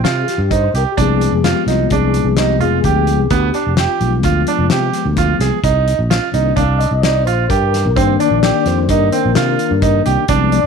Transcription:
0.04 0.24 C3 medium
0.04 0.37 F4 medium
0.04 snare loud
0.04 closed hi-hat medium
0.22 0.28 G#4 medium
0.28 0.53 G4 medium
0.28 snare soft
0.28 closed hi-hat medium
0.38 0.67 G2 medium
0.51 0.67 D#4 medium
0.51 0.74 C5 medium
0.51 kick medium
0.51 closed hi-hat medium
0.74 0.84 C2 medium
0.74 0.91 G4 medium
0.74 0.84 A#4 medium
0.74 closed hi-hat medium
0.92 0.98 G4 medium
0.97 1.27 C2 loud
0.97 3.27 F3 medium
0.97 3.27 G#3 soft
0.97 3.28 B3 medium
0.97 1.31 D4 medium
0.97 kick loud
0.97 closed hi-hat medium
1.02 1.48 G#4 medium
1.21 closed hi-hat medium
1.32 1.51 F1 medium
1.44 1.61 F4 medium
1.44 1.70 G4 medium
1.44 snare loud
1.44 closed hi-hat medium
1.66 1.86 C2 medium
1.66 1.84 D#4 medium
1.66 1.93 F4 medium
1.66 snare soft
1.66 closed hi-hat medium
1.90 2.20 C2 medium
1.90 2.25 D4 medium
1.90 2.40 G#4 medium
1.90 kick loud
1.90 closed hi-hat medium
2.14 closed hi-hat medium
2.24 2.61 C2 medium
2.37 2.54 D#4 medium
2.37 2.59 G4 medium
2.37 snare loud
2.37 closed hi-hat medium
2.60 2.79 F1 medium
2.60 2.77 F4 medium
2.60 3.33 G#4 medium
2.60 closed hi-hat medium
2.84 3.20 D2 medium
2.84 3.18 G4 medium
2.84 kick medium
2.84 closed hi-hat medium
3.07 closed hi-hat medium
3.20 3.29 C2 medium
3.30 3.50 D2 loud
3.30 3.47 B3 medium
3.30 3.75 G4 medium
3.30 kick loud
3.30 closed hi-hat medium
3.54 3.71 D4 medium
3.54 closed hi-hat medium
3.67 3.85 F1 medium
3.77 4.90 F4 medium
3.77 4.11 G4 medium
3.77 snare loud
3.77 closed hi-hat medium
4.00 4.24 B1 medium
4.00 5.59 F3 medium
4.00 5.60 G#3 soft
4.00 5.60 B3 medium
4.00 closed hi-hat medium
4.23 4.43 D2 medium
4.23 4.41 F4 medium
4.23 kick medium
4.23 snare soft
4.23 closed hi-hat medium
4.47 4.64 D4 medium
4.47 closed hi-hat medium
4.59 4.68 F1 medium
4.70 4.89 C3 medium
4.70 5.04 G4 medium
4.70 snare loud
4.70 closed hi-hat medium
4.93 snare soft
4.93 closed hi-hat medium
5.06 5.34 D2 medium
5.17 5.34 F4 medium
5.17 kick loud
5.17 snare soft
5.17 closed hi-hat medium
5.40 5.49 C2 medium
5.40 5.57 G#4 medium
5.40 snare soft
5.40 closed hi-hat medium
5.64 5.92 C2 medium
5.64 5.97 D#4 medium
5.64 kick loud
5.64 closed hi-hat medium
5.88 closed hi-hat medium
5.99 6.18 A#1 medium
6.10 6.27 F4 medium
6.10 snare loud
6.10 closed hi-hat medium
6.32 6.53 C2 medium
6.32 6.64 D#3 soft
6.32 6.64 A#3 soft
6.32 6.65 D4 medium
6.32 6.50 D#4 medium
6.32 closed hi-hat medium
6.56 6.85 C2 medium
6.56 6.90 D4 medium
6.56 6.80 F5 medium
6.56 kick loud
6.56 closed hi-hat medium
6.79 7.03 D#5 medium
6.79 closed hi-hat medium
6.91 7.27 C2 medium
7.02 7.20 D#4 medium
7.02 7.24 D5 loud
7.02 snare loud
7.02 closed hi-hat medium
7.25 7.46 A#1 medium
7.25 7.43 F4 medium
7.25 7.50 C5 medium
7.25 closed hi-hat medium
7.49 7.87 G2 medium
7.49 7.83 G4 medium
7.49 7.97 A#4 medium
7.49 kick loud
7.49 closed hi-hat medium
7.74 snare soft
7.74 closed hi-hat medium
7.86 7.95 C2 medium
7.96 8.15 G2 loud
7.96 10.25 D#3 medium
7.96 10.25 A#3 soft
7.96 8.13 C4 medium
7.96 10.26 D4 medium
7.96 8.07 C5 medium
7.96 kick loud
7.96 closed hi-hat medium
8.20 8.36 D4 medium
8.20 8.68 D5 loud
8.20 closed hi-hat medium
8.31 8.50 A#1 medium
8.43 8.76 G4 medium
8.43 snare loud
8.43 closed hi-hat medium
8.66 8.89 F2 medium
8.66 8.91 C5 medium
8.66 snare soft
8.66 closed hi-hat medium
8.89 9.08 G2 medium
8.89 9.07 D#4 medium
8.89 10.03 A#4 medium
8.89 kick loud
8.89 closed hi-hat medium
9.12 9.29 C4 medium
9.12 closed hi-hat medium
9.25 9.35 A#1 medium
9.35 9.55 C3 medium
9.35 9.69 F4 medium
9.35 snare loud
9.35 closed hi-hat medium
9.59 closed hi-hat medium
9.71 10.00 G2 medium
9.82 9.99 D#4 medium
9.82 kick loud
9.82 closed hi-hat medium
10.06 10.16 C2 medium
10.06 10.22 G4 medium
10.06 closed hi-hat medium
10.28 10.58 C2 loud
10.28 10.60 F3 medium
10.28 10.61 G#3 medium
10.28 10.61 B3 medium
10.28 10.62 D4 medium
10.28 kick loud
10.28 closed hi-hat medium
10.52 10.67 D5 loud
10.52 closed hi-hat medium

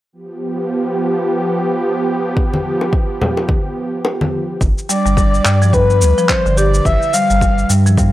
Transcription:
0.13 4.57 F3 medium
0.13 4.57 B3 medium
0.13 4.57 G4 medium
2.37 kick medium
2.54 high conga medium
2.81 high bongo soft
2.93 kick medium
3.21 low conga medium
3.37 high bongo soft
3.48 kick loud
3.48 high conga medium
4.05 high bongo medium
4.21 high conga medium
4.61 4.73 G1 medium
4.61 kick loud
4.61 shaker soft
4.78 shaker soft
4.89 5.04 G3 medium
4.89 5.75 D5 medium
4.89 shaker medium
5.05 5.40 G1 medium
5.05 5.16 G3 medium
5.05 shaker soft
5.17 5.33 G3 medium
5.17 kick loud
5.17 shaker soft
5.34 shaker soft
5.45 6.03 G2 medium
5.45 5.60 G3 medium
5.45 clap medium
5.45 shaker medium
5.62 5.68 F3 medium
5.62 shaker soft
5.73 5.89 G3 medium
5.73 6.31 B4 medium
5.73 kick loud
5.73 shaker soft
5.90 shaker soft
6.01 6.13 D2 medium
6.01 shaker medium
6.18 6.44 F3 medium
6.18 shaker soft
6.29 6.59 C5 medium
6.29 kick loud
6.29 clap medium
6.29 shaker soft
6.46 6.80 G1 medium
6.46 6.57 D3 medium
6.46 shaker soft
6.57 6.73 G4 medium
6.57 6.87 D5 loud
6.57 shaker medium
6.74 shaker soft
6.85 6.97 G1 loud
6.85 7.15 E5 loud
6.85 kick loud
6.85 shaker soft
7.02 shaker soft
7.13 7.29 G3 medium
7.13 7.69 F5 loud
7.13 shaker medium
7.30 7.64 G1 medium
7.30 7.40 G3 medium
7.30 shaker soft
7.41 7.57 G3 medium
7.41 kick medium
7.41 shaker soft
7.58 shaker soft
7.70 8.12 G2 medium
7.70 7.84 G3 medium
7.70 shaker medium
7.86 7.93 F3 medium
7.86 shaker soft
7.98 8.12 G3 medium
7.98 kick loud
7.98 shaker soft

